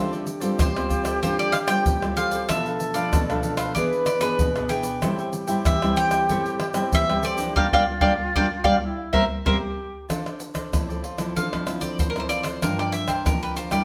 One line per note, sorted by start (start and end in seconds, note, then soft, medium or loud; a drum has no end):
0.00 0.57 D3 medium
0.00 0.27 G3 medium
0.00 0.27 C4 medium
0.00 0.10 F4 medium
0.00 0.27 F4 medium
0.00 2.50 G4 loud
0.00 0.11 A4 medium
0.00 0.11 C5 medium
0.00 0.11 D5 medium
0.00 0.24 E5 medium
0.12 0.25 A4 soft
0.12 0.25 C5 soft
0.12 0.26 D5 medium
0.12 pandeiro soft
0.12 shaker soft
0.26 muted cavaquinho stroke soft
0.26 pandeiro medium
0.26 shaker medium
0.40 0.70 G3 medium
0.40 0.70 C4 medium
0.40 0.70 F4 medium
0.40 0.74 A4 medium
0.40 0.73 C5 medium
0.40 0.73 D5 medium
0.40 pandeiro medium
0.40 shaker medium
0.59 1.20 A2 medium
0.59 1.21 C5 medium
0.59 pandeiro medium
0.59 tamborim medium
0.59 shaker medium
0.59 surdo loud
0.75 1.19 G3 medium
0.75 1.19 C4 medium
0.75 1.19 F4 medium
0.75 0.88 A4 soft
0.75 0.89 C5 soft
0.75 0.89 D5 medium
0.75 pandeiro soft
0.75 tamborim medium
0.75 shaker soft
0.89 1.05 F4 soft
0.89 1.04 A4 medium
0.89 1.03 C5 soft
0.89 1.02 D5 medium
0.89 pandeiro medium
0.89 shaker medium
0.89 surdo medium
1.03 1.21 A4 medium
1.03 1.21 C5 medium
1.03 1.20 D5 medium
1.03 pandeiro medium
1.03 tamborim medium
1.03 shaker medium
1.22 1.83 D3 medium
1.22 1.53 G3 medium
1.22 1.53 C4 medium
1.22 1.52 F4 medium
1.22 1.53 F4 medium
1.22 1.52 A4 medium
1.22 1.38 C5 medium
1.22 1.52 C5 medium
1.22 1.53 D5 medium
1.22 pandeiro medium
1.22 shaker medium
1.22 surdo medium
1.39 1.54 D5 loud
1.39 pandeiro soft
1.39 shaker soft
1.52 1.57 F5 loud
1.52 muted cavaquinho stroke soft
1.52 pandeiro medium
1.52 tamborim medium
1.52 shaker medium
1.67 1.96 G3 medium
1.67 1.96 C4 medium
1.67 1.96 F4 medium
1.67 2.00 A4 medium
1.67 2.00 C5 medium
1.67 1.99 D5 medium
1.67 2.13 G5 loud
1.67 pandeiro medium
1.67 tamborim medium
1.67 shaker medium
1.86 2.47 A2 medium
1.86 pandeiro medium
1.86 shaker medium
1.86 surdo loud
2.02 2.45 G3 medium
2.02 2.45 C4 medium
2.02 2.45 F4 medium
2.02 2.15 A4 soft
2.02 2.16 C5 soft
2.02 2.16 D5 soft
2.02 pandeiro soft
2.02 tamborim medium
2.02 shaker soft
2.16 2.32 F4 medium
2.16 2.31 A4 medium
2.16 2.31 C5 medium
2.16 2.30 D5 medium
2.16 2.50 F5 medium
2.16 pandeiro medium
2.16 shaker medium
2.31 2.48 A4 soft
2.31 2.48 C5 soft
2.31 2.47 D5 soft
2.31 pandeiro medium
2.31 shaker medium
2.49 3.10 B2 medium
2.49 2.92 F3 soft
2.49 2.93 A3 medium
2.49 2.64 D4 medium
2.49 2.93 D4 medium
2.49 3.77 A4 loud
2.49 2.64 A4 medium
2.49 2.65 B4 medium
2.49 2.94 E5 loud
2.49 2.65 F5 medium
2.49 pandeiro medium
2.49 tamborim medium
2.49 shaker medium
2.49 surdo medium
2.66 2.79 A4 soft
2.66 2.80 B4 soft
2.66 2.80 F5 medium
2.66 pandeiro soft
2.66 shaker soft
2.80 pandeiro medium
2.80 shaker medium
2.94 3.23 F3 medium
2.94 3.23 A3 medium
2.94 3.23 D4 medium
2.94 3.27 A4 medium
2.94 3.27 B4 medium
2.94 3.55 D5 medium
2.94 3.26 F5 medium
2.94 pandeiro medium
2.94 shaker medium
3.13 3.73 B2 medium
3.13 pandeiro medium
3.13 tamborim medium
3.13 shaker medium
3.13 surdo loud
3.29 3.72 F3 medium
3.29 3.72 A3 medium
3.29 3.72 D4 medium
3.29 3.42 A4 soft
3.29 3.42 B4 soft
3.29 3.43 F5 medium
3.29 pandeiro soft
3.29 tamborim medium
3.29 shaker soft
3.43 3.58 D4 soft
3.43 3.58 A4 soft
3.43 3.57 B4 medium
3.43 3.56 F5 soft
3.43 pandeiro medium
3.43 shaker medium
3.57 3.74 A4 medium
3.57 3.74 B4 medium
3.57 3.73 C5 medium
3.57 3.73 F5 medium
3.57 pandeiro medium
3.57 tamborim medium
3.57 shaker medium
3.75 4.37 E3 medium
3.75 4.06 B3 medium
3.75 4.06 D4 medium
3.75 4.05 E4 medium
3.75 4.05 G#4 medium
3.75 4.07 G#4 medium
3.75 4.75 B4 loud
3.75 4.05 B4 medium
3.75 3.83 D5 medium
3.75 4.05 D5 medium
3.75 pandeiro medium
3.75 shaker medium
3.75 surdo medium
3.93 pandeiro soft
3.93 shaker soft
4.06 4.20 D5 medium
4.06 muted cavaquinho stroke soft
4.06 pandeiro medium
4.06 tamborim medium
4.06 shaker medium
4.20 4.49 B3 medium
4.20 4.49 D4 medium
4.20 4.53 G#4 medium
4.20 4.50 G#4 medium
4.20 4.66 B4 medium
4.20 4.53 B4 medium
4.20 4.52 D5 medium
4.20 pandeiro medium
4.20 tamborim medium
4.20 shaker medium
4.39 5.00 B2 medium
4.39 pandeiro medium
4.39 shaker medium
4.39 surdo medium
4.56 4.98 B3 medium
4.56 4.99 D4 medium
4.56 4.99 G#4 medium
4.56 4.69 G#4 soft
4.56 4.70 B4 soft
4.56 4.70 D5 medium
4.56 pandeiro soft
4.56 tamborim medium
4.56 shaker soft
4.69 4.85 E4 medium
4.69 4.84 G#4 medium
4.69 4.84 B4 medium
4.69 4.83 D5 medium
4.69 5.29 G5 medium
4.69 pandeiro medium
4.69 shaker medium
4.83 5.01 G#4 soft
4.83 5.01 B4 soft
4.83 5.00 D5 medium
4.83 pandeiro medium
4.83 shaker medium
5.02 5.63 A2 medium
5.02 5.45 G3 medium
5.02 5.46 C4 soft
5.02 5.46 E4 medium
5.02 7.58 G4 loud
5.02 5.17 A4 medium
5.02 5.17 C5 medium
5.02 5.18 E5 medium
5.02 5.18 G5 medium
5.02 pandeiro medium
5.02 tamborim medium
5.02 shaker medium
5.02 surdo medium
5.19 5.32 C5 soft
5.19 5.33 E5 soft
5.19 5.33 G5 soft
5.19 pandeiro soft
5.19 shaker soft
5.33 muted cavaquinho stroke soft
5.33 pandeiro medium
5.33 shaker medium
5.47 5.76 G3 medium
5.47 5.76 C4 medium
5.47 5.76 E4 medium
5.47 5.80 C5 medium
5.47 5.80 E5 medium
5.47 5.79 G5 medium
5.47 pandeiro medium
5.47 shaker medium
5.65 6.26 E3 medium
5.65 5.96 E5 medium
5.65 pandeiro medium
5.65 tamborim medium
5.65 shaker medium
5.65 surdo loud
5.82 6.25 G3 medium
5.82 6.25 C4 medium
5.82 6.25 E4 medium
5.82 5.96 C5 soft
5.82 5.96 E5 soft
5.82 5.97 G5 medium
5.82 pandeiro soft
5.82 tamborim medium
5.82 shaker soft
5.96 6.12 A4 medium
5.96 6.11 C5 medium
5.96 6.11 E5 medium
5.96 6.57 G5 loud
5.96 6.10 G5 medium
5.96 pandeiro medium
5.96 shaker medium
6.11 6.28 C5 medium
6.11 6.27 E5 medium
6.11 6.27 G5 medium
6.11 pandeiro medium
6.11 tamborim medium
6.11 shaker medium
6.29 6.90 A2 medium
6.29 6.59 G3 medium
6.29 6.59 C4 medium
6.29 6.60 E4 medium
6.29 6.58 A4 medium
6.29 6.59 C5 medium
6.29 6.59 E5 medium
6.29 6.60 G5 medium
6.29 pandeiro medium
6.29 shaker medium
6.29 surdo medium
6.46 pandeiro soft
6.46 shaker soft
6.60 muted cavaquinho stroke soft
6.60 pandeiro medium
6.60 tamborim medium
6.74 7.02 G3 medium
6.74 7.02 C4 medium
6.74 7.03 E4 medium
6.74 7.07 C5 medium
6.74 7.06 E5 medium
6.74 7.06 G5 medium
6.74 pandeiro medium
6.74 tamborim medium
6.74 shaker medium
6.93 7.53 E3 medium
6.93 7.23 E5 loud
6.93 pandeiro medium
6.93 shaker medium
6.93 surdo loud
7.09 7.36 G3 medium
7.09 7.36 C4 medium
7.09 7.36 E4 medium
7.09 7.22 C5 soft
7.09 7.23 E5 soft
7.09 7.23 G5 medium
7.09 pandeiro soft
7.09 tamborim medium
7.09 shaker soft
7.23 7.38 A4 medium
7.23 7.38 C5 medium
7.23 7.55 D5 loud
7.23 7.38 E5 medium
7.23 7.37 G5 medium
7.23 pandeiro medium
7.23 shaker medium
7.38 7.55 F3 medium
7.38 7.55 A#3 medium
7.38 7.55 D4 medium
7.38 7.54 C5 soft
7.38 7.54 E5 soft
7.38 7.54 G5 medium
7.38 pandeiro medium
7.38 shaker medium
7.56 7.66 G3 medium
7.56 7.66 A#3 medium
7.56 7.66 D4 medium
7.56 8.82 F4 loud
7.56 7.66 G4 medium
7.56 7.66 A#4 medium
7.56 7.66 D5 loud
7.56 7.67 D5 medium
7.56 7.66 F5 loud
7.56 7.66 G5 medium
7.56 surdo loud
7.73 7.83 G3 medium
7.73 7.83 A#3 medium
7.73 7.83 D4 medium
7.73 7.83 G4 medium
7.73 7.83 A#4 medium
7.73 7.83 D5 medium
7.73 7.83 F5 loud
7.73 7.83 G5 loud
7.73 surdo medium
8.01 8.12 G3 medium
8.01 8.12 A#3 medium
8.01 8.12 D4 medium
8.01 8.12 G4 medium
8.01 8.12 A#4 medium
8.01 8.12 D5 medium
8.01 8.12 F5 medium
8.01 8.12 G5 medium
8.01 surdo loud
8.35 8.46 G3 loud
8.35 8.46 A#3 medium
8.35 8.46 D4 loud
8.35 8.46 G4 medium
8.35 8.46 A#4 medium
8.35 8.45 D5 loud
8.35 8.46 D5 medium
8.35 8.46 F5 medium
8.35 8.46 G5 loud
8.35 surdo medium
8.64 8.76 G3 medium
8.64 8.76 A#3 loud
8.64 8.76 D4 medium
8.64 8.75 G4 medium
8.64 8.75 A#4 medium
8.64 8.75 D5 medium
8.64 8.76 F5 loud
8.64 8.76 G5 medium
8.64 surdo loud
8.83 9.16 E4 medium
9.13 9.24 G3 medium
9.13 9.24 A#3 medium
9.13 9.24 C4 medium
9.13 9.24 A#4 medium
9.13 9.24 C5 medium
9.13 9.24 E5 medium
9.13 surdo loud
9.45 9.56 G3 loud
9.45 9.56 A#3 medium
9.45 9.56 C4 medium
9.45 10.05 G4 medium
9.45 9.56 A#4 medium
9.45 9.56 A#4 loud
9.45 9.56 C5 medium
9.45 9.56 E5 medium
9.45 surdo loud
10.09 10.70 D3 medium
10.09 10.24 F4 medium
10.09 10.24 A4 medium
10.09 10.24 C5 medium
10.09 10.25 D5 medium
10.09 pandeiro medium
10.09 tamborim medium
10.09 shaker medium
10.09 surdo medium
10.26 10.39 A4 soft
10.26 10.39 C5 soft
10.26 10.39 D5 soft
10.26 pandeiro soft
10.26 tamborim medium
10.26 shaker soft
10.40 muted cavaquinho stroke soft
10.40 pandeiro medium
10.40 shaker medium
10.54 10.87 A4 soft
10.54 10.86 C5 medium
10.54 10.86 D5 medium
10.54 pandeiro medium
10.54 tamborim medium
10.54 shaker medium
10.54 surdo soft
10.73 11.33 A2 medium
10.73 11.03 F3 medium
10.73 11.03 C4 soft
10.73 11.03 E4 medium
10.73 pandeiro medium
10.73 tamborim medium
10.73 shaker medium
10.73 surdo medium
10.89 11.02 A4 soft
10.89 11.03 C5 soft
10.89 11.03 D5 soft
10.89 pandeiro soft
10.89 shaker soft
11.02 11.18 F4 soft
11.02 11.18 A4 soft
11.02 11.17 C5 medium
11.02 11.16 D5 soft
11.02 pandeiro medium
11.17 11.46 F3 medium
11.17 11.46 C4 medium
11.17 11.46 E4 medium
11.17 11.34 A4 soft
11.17 11.34 C5 medium
11.17 11.33 D5 medium
11.17 pandeiro medium
11.17 tamborim medium
11.17 shaker medium
11.17 surdo soft
11.36 11.96 D3 medium
11.36 11.65 F4 medium
11.36 11.65 A4 medium
11.36 11.66 C5 medium
11.36 11.66 D5 medium
11.36 11.80 F5 medium
11.36 pandeiro medium
11.36 shaker medium
11.36 surdo medium
11.53 11.63 F3 medium
11.53 11.63 C4 medium
11.53 11.63 E4 medium
11.53 pandeiro soft
11.53 tamborim medium
11.53 shaker soft
11.53 surdo soft
11.66 12.10 F3 medium
11.66 12.10 C4 medium
11.66 12.10 E4 medium
11.66 muted cavaquinho stroke soft
11.66 pandeiro medium
11.66 tamborim medium
11.66 shaker medium
11.81 12.14 A4 medium
11.81 12.13 C5 medium
11.81 12.13 D5 medium
11.81 11.98 D5 medium
11.81 pandeiro medium
11.81 shaker medium
11.81 surdo soft
11.99 12.60 A2 medium
11.99 12.09 C5 medium
11.99 pandeiro medium
11.99 shaker medium
11.99 surdo medium
12.10 12.19 A#4 medium
12.16 12.58 F3 medium
12.16 12.58 C4 medium
12.16 12.59 E4 medium
12.16 12.29 A4 soft
12.16 12.30 C5 soft
12.16 12.30 D5 soft
12.16 pandeiro soft
12.16 tamborim medium
12.16 shaker soft
12.20 12.29 C5 medium
12.29 12.45 F4 medium
12.29 12.45 A4 medium
12.29 12.44 C5 medium
12.29 12.43 D5 medium
12.29 pandeiro medium
12.29 shaker medium
12.43 12.61 A4 soft
12.43 12.60 C5 medium
12.43 12.61 C5 soft
12.43 12.60 D5 medium
12.43 pandeiro medium
12.43 tamborim medium
12.43 shaker medium
12.62 13.23 G2 medium
12.62 13.04 F3 medium
12.62 13.04 A#3 medium
12.62 13.04 D4 medium
12.62 12.77 F4 medium
12.62 12.78 A#4 medium
12.62 12.78 D5 medium
12.62 12.78 G5 medium
12.62 pandeiro medium
12.62 tamborim medium
12.62 shaker medium
12.62 surdo medium
12.79 12.92 A#4 soft
12.79 12.94 D5 medium
12.79 12.93 D5 soft
12.79 12.93 G5 soft
12.79 pandeiro soft
12.79 tamborim medium
12.79 shaker soft
12.92 13.09 E5 loud
12.92 muted cavaquinho stroke soft
12.92 pandeiro medium
12.92 shaker medium
13.08 13.40 A#4 medium
13.08 13.25 C5 medium
13.08 13.40 D5 medium
13.08 13.39 G5 medium
13.08 pandeiro medium
13.08 tamborim medium
13.08 shaker medium
13.08 surdo soft
13.26 13.84 D3 medium
13.26 13.69 F3 medium
13.26 13.69 A#3 medium
13.26 13.69 D4 medium
13.26 13.42 A#4 medium
13.26 pandeiro medium
13.26 tamborim medium
13.26 shaker medium
13.26 surdo loud
13.42 13.56 A#4 soft
13.42 13.56 B4 medium
13.42 13.57 D5 soft
13.42 13.57 G5 soft
13.42 pandeiro soft
13.42 shaker soft
13.56 13.72 F4 soft
13.56 13.72 A#4 medium
13.56 13.72 C5 medium
13.56 13.71 D5 medium
13.56 13.70 G5 medium
13.56 pandeiro medium
13.56 shaker medium
13.71 13.84 G3 medium
13.71 13.84 A#3 medium
13.71 13.84 E4 medium
13.71 13.84 A#4 medium
13.71 13.84 D5 medium
13.71 13.84 G5 medium
13.71 pandeiro medium
13.71 tamborim medium
13.71 shaker medium
13.71 surdo soft